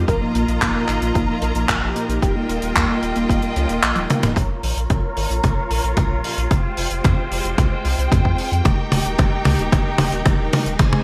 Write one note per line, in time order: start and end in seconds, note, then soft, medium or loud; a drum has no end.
0.08 0.18 A#1 loud
0.08 0.45 A#2 medium
0.08 0.45 F3 medium
0.08 0.45 A#3 medium
0.08 0.45 D#4 medium
0.08 0.45 F4 medium
0.08 2.20 F4 medium
0.08 0.17 A#4 loud
0.08 4.33 A#4 medium
0.08 2.20 D#5 medium
0.08 2.20 A#5 medium
0.08 kick loud
0.08 closed hi-hat medium
0.22 0.30 A#3 medium
0.35 0.44 A#1 medium
0.35 0.44 A#3 medium
0.35 closed hi-hat medium
0.48 0.58 A#1 medium
0.48 0.85 A#2 medium
0.48 0.85 F3 medium
0.48 0.85 A#3 medium
0.48 0.85 D#4 medium
0.48 0.85 F4 medium
0.48 closed hi-hat medium
0.62 0.71 A#1 loud
0.62 0.71 A#3 medium
0.62 kick loud
0.62 clap loud
0.62 closed hi-hat medium
0.75 0.84 A#3 medium
0.88 0.98 G#1 medium
0.88 1.25 A#2 loud
0.88 1.25 F3 medium
0.88 1.25 A#3 medium
0.88 1.25 D#4 medium
0.88 1.25 F4 loud
0.88 clap soft
0.88 closed hi-hat medium
1.02 1.11 A#1 medium
1.02 1.11 A#3 medium
1.02 closed hi-hat medium
1.15 1.25 A#1 loud
1.15 1.24 A#3 medium
1.15 kick loud
1.15 closed hi-hat medium
1.29 1.51 A#2 medium
1.29 1.51 F3 medium
1.29 1.51 A#3 medium
1.29 1.38 A#3 medium
1.29 1.51 D#4 medium
1.29 1.51 F4 medium
1.42 1.51 A#1 medium
1.42 1.51 A#4 medium
1.42 closed hi-hat medium
1.55 1.65 A#1 medium
1.55 1.79 A#2 medium
1.55 1.79 F3 medium
1.55 1.79 A#3 medium
1.55 1.64 A#3 medium
1.55 1.79 D#4 medium
1.55 1.79 F4 medium
1.55 closed hi-hat medium
1.69 1.78 A#1 loud
1.69 1.78 A#3 medium
1.69 kick loud
1.69 clap loud
1.69 closed hi-hat medium
1.82 1.92 A#1 medium
1.82 2.19 A#2 loud
1.82 2.19 F3 medium
1.82 2.19 A#3 medium
1.82 2.19 D#4 medium
1.82 2.19 G4 loud
1.96 2.05 A#3 medium
1.96 closed hi-hat medium
2.09 2.18 A#1 medium
2.09 2.18 A#3 medium
2.09 closed hi-hat medium
2.22 2.32 D#1 loud
2.22 2.59 G3 medium
2.22 2.59 A#3 medium
2.22 2.59 D#4 medium
2.22 4.35 F4 medium
2.22 2.59 F4 medium
2.22 2.31 G4 loud
2.22 4.35 D#5 medium
2.22 4.35 G5 medium
2.22 kick loud
2.22 closed hi-hat medium
2.36 2.45 A#3 medium
2.49 2.59 D#1 medium
2.49 2.58 A#3 medium
2.49 closed hi-hat medium
2.62 2.72 D#1 medium
2.62 3.00 G3 medium
2.62 3.00 A#3 medium
2.62 3.00 D#4 medium
2.62 3.00 F4 medium
2.62 closed hi-hat medium
2.76 2.85 D#2 loud
2.76 2.85 A#3 medium
2.76 kick loud
2.76 clap loud
2.76 closed hi-hat medium
2.89 2.98 A#3 medium
3.03 3.12 D#1 medium
3.03 3.40 G3 loud
3.03 3.40 A#3 medium
3.03 3.40 D#4 medium
3.03 3.40 F4 loud
3.03 closed hi-hat medium
3.16 3.26 D#1 medium
3.16 3.25 A#3 medium
3.16 closed hi-hat medium
3.29 3.39 D#1 loud
3.29 3.38 A#3 medium
3.29 kick loud
3.29 closed hi-hat medium
3.42 3.54 G3 medium
3.42 3.52 A#3 medium
3.42 3.54 A#3 medium
3.42 3.54 D#4 medium
3.42 3.54 F4 medium
3.42 closed hi-hat medium
3.56 3.66 C#2 loud
3.56 3.73 G3 loud
3.56 3.73 A#3 medium
3.56 3.65 C#4 medium
3.56 3.73 D#4 medium
3.56 3.73 F4 loud
3.56 closed hi-hat medium
3.69 3.79 D#1 medium
3.69 3.78 A#3 medium
3.69 closed hi-hat medium
3.83 3.93 A#1 loud
3.83 3.92 A#3 medium
3.83 clap loud
3.83 closed hi-hat medium
3.96 4.06 D#1 medium
3.96 4.33 G3 medium
3.96 4.33 A#3 medium
3.96 4.33 D#4 medium
3.96 4.33 F4 loud
3.96 closed hi-hat medium
3.96 high tom soft
4.10 4.19 A#3 medium
4.10 closed hi-hat medium
4.10 mid tom medium
4.23 4.33 D#1 medium
4.23 4.32 A#3 medium
4.23 closed hi-hat medium
4.23 mid tom medium
4.36 4.46 A#1 loud
4.36 4.74 A#2 medium
4.36 4.74 F3 medium
4.36 4.74 A#3 medium
4.36 4.74 C#4 medium
4.36 8.61 F4 medium
4.36 4.74 F4 medium
4.36 6.49 A#4 medium
4.36 6.49 C#5 medium
4.36 6.49 A#5 medium
4.36 kick loud
4.36 closed hi-hat medium
4.36 mid tom soft
4.63 4.73 A#1 medium
4.63 open hi-hat loud
4.77 4.86 A#1 medium
4.77 5.14 A#2 medium
4.77 5.14 F3 medium
4.77 5.14 A#3 medium
4.77 5.14 C#4 medium
4.77 5.14 F4 medium
4.77 closed hi-hat medium
4.90 5.00 A#1 loud
4.90 kick loud
4.90 closed hi-hat medium
4.90 mid tom soft
5.17 5.26 G#1 medium
5.17 5.54 A#2 loud
5.17 5.54 F3 medium
5.17 5.54 A#3 medium
5.17 5.54 C#4 medium
5.17 5.54 F4 loud
5.17 open hi-hat loud
5.30 5.40 A#1 medium
5.30 closed hi-hat medium
5.44 5.53 A#1 loud
5.44 kick loud
5.44 closed hi-hat medium
5.44 mid tom medium
5.57 5.80 A#2 medium
5.57 5.80 F3 medium
5.57 5.80 A#3 medium
5.57 5.80 C#4 medium
5.57 5.80 F4 medium
5.70 5.80 A#1 medium
5.70 open hi-hat loud
5.84 5.93 A#1 medium
5.84 6.08 A#2 medium
5.84 6.08 F3 medium
5.84 6.08 A#3 medium
5.84 6.08 C#4 medium
5.84 6.08 F4 medium
5.84 closed hi-hat medium
5.97 6.07 A#1 loud
5.97 kick loud
5.97 closed hi-hat medium
5.97 mid tom medium
6.11 6.20 A#1 medium
6.11 6.48 A#2 loud
6.11 6.48 F3 medium
6.11 6.48 A#3 medium
6.11 6.48 C#4 medium
6.11 6.48 G4 loud
6.24 open hi-hat loud
6.38 6.47 A#1 medium
6.38 closed hi-hat medium
6.51 6.60 F1 medium
6.51 6.88 G#3 medium
6.51 8.63 G#3 medium
6.51 6.88 C4 medium
6.51 6.88 F4 medium
6.51 6.88 G4 medium
6.51 8.63 C5 medium
6.51 10.76 G5 medium
6.51 kick loud
6.51 closed hi-hat medium
6.51 mid tom medium
6.77 6.87 F1 loud
6.77 open hi-hat loud
6.91 7.01 F1 medium
6.91 7.28 G#3 medium
6.91 7.28 C4 medium
6.91 7.28 F4 medium
6.91 7.28 G4 medium
6.91 closed hi-hat medium
7.04 7.14 F2 loud
7.04 kick loud
7.04 closed hi-hat medium
7.04 mid tom medium
7.31 7.41 F1 medium
7.31 7.68 G#3 medium
7.31 7.68 C4 medium
7.31 7.68 F4 medium
7.31 7.68 G4 loud
7.31 open hi-hat loud
7.45 7.54 F1 medium
7.45 closed hi-hat medium
7.58 7.68 C2 loud
7.58 kick loud
7.58 closed hi-hat medium
7.58 mid tom medium
7.71 7.94 G#3 medium
7.71 7.94 C4 medium
7.71 7.94 F4 medium
7.71 7.94 G4 medium
7.85 7.94 C2 medium
7.85 open hi-hat loud
7.98 8.08 C2 medium
7.98 8.22 G#3 medium
7.98 8.22 C4 medium
7.98 8.22 F4 medium
7.98 8.22 G4 medium
7.98 closed hi-hat medium
8.12 8.21 F2 loud
8.12 kick loud
8.12 closed hi-hat medium
8.12 mid tom medium
8.25 8.35 F2 medium
8.25 8.62 G#3 loud
8.25 8.62 C4 medium
8.25 8.62 F4 medium
8.25 8.62 G#4 loud
8.25 kick medium
8.38 open hi-hat loud
8.52 8.61 F2 medium
8.52 closed hi-hat medium
8.65 8.75 D#1 loud
8.65 9.02 G3 medium
8.65 9.02 A#3 medium
8.65 11.04 D#4 medium
8.65 9.02 D#4 medium
8.65 10.77 G4 medium
8.65 9.02 G4 medium
8.65 10.77 A#4 medium
8.65 kick loud
8.65 closed hi-hat medium
8.65 mid tom medium
8.92 9.01 D#1 loud
8.92 open hi-hat loud
8.92 mid tom medium
9.05 9.15 D#1 medium
9.05 9.42 G3 medium
9.05 9.42 A#3 medium
9.05 9.42 D#4 medium
9.05 9.42 G4 medium
9.05 closed hi-hat medium
9.18 9.28 D#1 loud
9.18 kick loud
9.18 closed hi-hat medium
9.18 mid tom medium
9.45 9.55 C#2 medium
9.45 9.83 G3 loud
9.45 9.83 A#3 medium
9.45 9.83 D#4 medium
9.45 9.82 G4 loud
9.45 open hi-hat medium
9.45 mid tom medium
9.59 9.68 D#1 medium
9.59 closed hi-hat medium
9.72 9.82 D#1 loud
9.72 kick loud
9.72 closed hi-hat medium
9.72 mid tom medium
9.86 10.09 G3 medium
9.86 10.09 A#3 medium
9.86 10.09 D#4 medium
9.86 10.09 G4 medium
9.98 10.09 D#1 loud
9.98 open hi-hat loud
9.98 mid tom medium
10.12 10.22 D#1 medium
10.12 10.36 G3 medium
10.12 10.36 A#3 medium
10.12 10.36 D#4 medium
10.12 10.36 G4 medium
10.12 closed hi-hat medium
10.26 10.35 D#1 loud
10.26 kick loud
10.26 closed hi-hat medium
10.26 mid tom medium
10.39 10.49 D#1 medium
10.39 10.76 G3 loud
10.39 10.76 A#3 medium
10.39 10.76 D#4 medium
10.39 10.76 A#4 loud
10.53 open hi-hat loud
10.53 mid tom medium
10.66 10.76 D#1 medium
10.66 closed hi-hat medium
10.79 10.89 G#1 loud
10.79 11.04 G#2 medium
10.79 11.04 G#3 medium
10.79 11.04 C4 medium
10.79 11.04 D#4 medium
10.79 11.04 G#4 medium
10.79 11.04 C5 medium
10.79 11.04 G#5 loud
10.79 kick loud
10.79 closed hi-hat medium
10.79 mid tom medium
10.93 mid tom medium